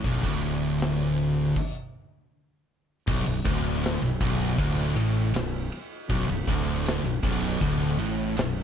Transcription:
0.04 0.22 B0 loud
0.04 0.22 B1 loud
0.04 kick loud
0.04 closed hi-hat medium
0.23 1.52 D1 medium
0.23 1.56 D2 loud
0.23 kick loud
0.42 closed hi-hat medium
0.80 snare loud
0.80 closed hi-hat loud
1.19 closed hi-hat medium
1.56 kick loud
1.56 crash loud
3.07 3.25 B0 medium
3.07 3.26 B1 loud
3.07 kick loud
3.07 crash loud
3.26 3.44 B0 medium
3.26 3.45 B1 medium
3.45 3.98 D1 loud
3.45 4.01 D2 loud
3.45 kick loud
3.45 ride medium
3.84 snare loud
3.84 ride loud
4.02 4.20 B0 medium
4.02 4.20 B1 medium
4.21 4.56 B0 loud
4.21 4.58 B1 medium
4.21 kick loud
4.21 ride medium
4.58 4.94 D1 loud
4.58 4.96 D2 loud
4.58 kick loud
4.58 ride loud
4.95 5.31 A1 loud
4.95 5.33 A2 loud
4.95 ride medium
5.32 5.69 B0 medium
5.32 5.64 B1 medium
5.32 snare loud
5.32 ride loud
5.72 ride medium
6.10 6.27 B0 medium
6.10 6.27 B1 loud
6.10 kick loud
6.10 ride loud
6.28 6.46 B0 medium
6.28 6.47 B1 medium
6.47 7.00 D1 loud
6.47 7.03 D2 loud
6.47 kick loud
6.47 ride medium
6.86 snare loud
6.86 ride loud
7.03 7.21 B0 medium
7.03 7.22 B1 medium
7.23 7.58 B0 medium
7.23 7.60 B1 loud
7.23 kick loud
7.23 ride medium
7.61 7.96 D1 medium
7.61 7.98 D2 loud
7.61 kick loud
7.61 ride loud
7.99 8.34 A1 loud
7.99 8.35 A2 loud
7.99 ride medium
8.37 8.63 B0 medium
8.37 8.63 B1 medium
8.37 snare loud
8.37 ride loud

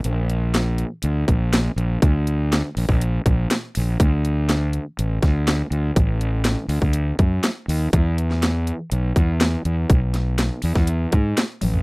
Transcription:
0.04 0.83 A#1 loud
0.04 closed hi-hat medium
0.30 closed hi-hat medium
0.54 snare loud
0.54 closed hi-hat medium
0.78 closed hi-hat medium
1.03 1.23 D2 medium
1.03 closed hi-hat loud
1.28 1.68 A#1 medium
1.28 kick medium
1.28 closed hi-hat medium
1.53 snare loud
1.53 closed hi-hat loud
1.76 1.96 A#1 medium
1.76 closed hi-hat medium
2.02 2.61 D2 medium
2.02 kick loud
2.02 closed hi-hat medium
2.27 closed hi-hat medium
2.52 snare loud
2.52 closed hi-hat loud
2.77 2.86 A#1 medium
2.77 open hi-hat medium
2.89 3.18 A#1 medium
2.89 kick medium
3.01 closed hi-hat loud
3.26 3.45 A#1 medium
3.26 kick medium
3.26 closed hi-hat medium
3.50 snare loud
3.50 closed hi-hat loud
3.75 3.96 A#1 medium
3.75 open hi-hat medium
4.00 4.78 D2 loud
4.00 kick loud
4.00 closed hi-hat medium
4.25 closed hi-hat medium
4.49 snare loud
4.49 closed hi-hat medium
4.73 closed hi-hat medium
4.99 5.18 A1 loud
4.99 closed hi-hat medium
5.23 5.62 D2 medium
5.23 kick medium
5.23 snare soft
5.23 closed hi-hat medium
5.47 snare loud
5.47 closed hi-hat medium
5.71 5.91 D2 medium
5.71 closed hi-hat medium
5.96 6.55 A1 loud
5.96 kick loud
5.96 closed hi-hat medium
6.21 closed hi-hat medium
6.44 snare loud
6.44 closed hi-hat loud
6.68 6.79 D2 medium
6.68 open hi-hat medium
6.82 7.11 D2 medium
6.82 kick medium
6.93 closed hi-hat loud
7.19 7.38 F#2 medium
7.19 kick medium
7.19 closed hi-hat medium
7.43 snare loud
7.43 closed hi-hat loud
7.68 7.88 D#2 medium
7.68 open hi-hat medium
7.93 8.71 E2 loud
7.93 kick loud
7.93 closed hi-hat medium
8.18 closed hi-hat medium
8.31 snare soft
8.42 snare loud
8.42 closed hi-hat medium
8.67 closed hi-hat medium
8.92 9.11 B1 loud
8.92 closed hi-hat loud
9.16 9.55 E2 medium
9.16 kick medium
9.16 closed hi-hat medium
9.40 snare loud
9.40 closed hi-hat loud
9.65 9.85 E2 medium
9.65 closed hi-hat medium
9.90 10.49 B1 medium
9.90 kick loud
9.90 closed hi-hat medium
10.14 snare soft
10.14 closed hi-hat medium
10.38 snare loud
10.38 closed hi-hat loud
10.62 10.73 E2 medium
10.62 open hi-hat medium
10.75 11.06 E2 medium
10.75 kick medium
10.75 snare soft
10.87 closed hi-hat loud
11.12 11.33 G#2 medium
11.12 kick medium
11.12 closed hi-hat medium
11.37 snare loud
11.37 closed hi-hat loud
11.61 11.82 A1 medium
11.61 open hi-hat medium
11.61 high tom medium
11.74 floor tom medium

